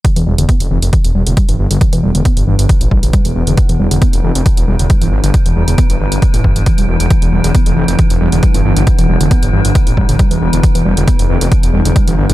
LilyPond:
<<
  \new Staff \with { instrumentName = "Synth drone" } { \clef bass \time 4/4 \key e \phrygian \tempo 4 = 136 <e b>1~ | <e b>1~ | <e b>1~ | <e b>1~ |
<e b>1~ | <e b>1~ | <e b>1 | }
  \new Staff \with { instrumentName = "Synth arpeggio sound" } { \clef bass \time 4/4 \key e \phrygian e16 e16 g16 d16 b16 r16 e16 r16 e16 r16 g16 d16 g16 e16 r16 d16 | e16 e16 g16 d16 b16 r16 e16 r16 e16 r16 g16 d16 g16 e16 r16 d16 | e16 e16 g16 d16 b16 r16 e16 r16 e16 r16 g16 d16 g16 e16 r16 d16 | r16 e16 g16 d16 b16 r16 e16 r16 e16 r16 e16 e16 e16 g16 r16 e16 |
e16 e16 g16 d16 b16 r16 e16 r16 e16 r16 g16 d16 g16 e16 r16 d16 | e16 e16 g16 d16 b16 r16 e16 r16 e16 r16 g16 d16 g16 e16 r16 d16 | e16 e16 g16 d16 b16 r16 e16 r16 e16 r16 g16 d16 g16 e16 r16 d16 | }
  \new Staff \with { instrumentName = "Detuned saw bass" } { \clef bass \time 4/4 \key e \phrygian r16 e,,16 e,,16 e,,16 r16 f,,16 f,,16 f,,16 r16 e,,16 e,,16 e,,16 r16 g,,16 g,,16 g,,16 | r16 e,,16 e,,16 e,,16 r16 g,,16 g,,16 g,,16 r16 a,,16 a,,16 a,,16 r16 e,,16 e,,16 e,,16 | r16 e,,16 e,,16 e,,16 r16 f,,16 f,,16 f,,16 r16 e,,16 e,,16 e,,16 r16 g,,16 g,,16 g,,16 | r16 e,,16 e,,16 e,,16 r16 g,,16 g,,16 g,,16 r16 a,,16 g,,16 g,,16 r16 e,,16 e,,16 e,,16 |
r16 e,,16 e,,16 e,,16 r16 f,,16 f,,16 f,,16 r16 e,,16 e,,16 e,,16 r16 g,,16 g,,16 g,,16 | r16 e,,16 e,,16 e,,16 r16 g,,16 g,,16 g,,16 r16 a,,16 a,,16 a,,16 r16 e,,16 e,,16 e,,16 | r16 e,,16 e,,16 e,,16 r16 f,,16 f,,16 f,,16 r16 e,,16 e,,16 e,,16 r16 g,,16 g,,16 g,,16 | }
  \new DrumStaff \with { instrumentName = "Drums" } \drummode { \time 4/4 <hh bd>16 hh8 hh16 <hh bd>16 hh8 hh16 <hh bd>16 hh8 hh16 <hh bd>16 hh8 hh16 | <hh bd>16 hh8 hh16 <hh bd>16 hh8 hh16 <hh bd>16 hh16 bd16 hh16 <hh bd>16 hh8 hh16 | <hh bd>16 hh8 hh16 <hh bd>16 hh8 hh16 <hh bd>16 hh8 hh16 <hh bd>16 hh8 hh16 | <hh bd>16 hh8 hh16 <hh bd>16 hh8 hh16 <hh bd>16 hh16 bd16 hh16 <hh bd>16 hh8 hh16 |
<hh bd>16 hh8 hh16 <hh bd>16 hh8 hh16 <hh bd>16 hh8 hh16 <hh bd>16 hh8 hh16 | <hh bd>16 hh8 hh16 <hh bd>16 hh8 hh16 <hh bd>16 hh16 bd16 hh16 <hh bd>16 hh8 hh16 | <hh bd>16 hh8 hh16 <hh bd>16 hh8 hh16 <hh bd>16 hh8 hh16 <hh bd>16 hh8 hh16 | }
>>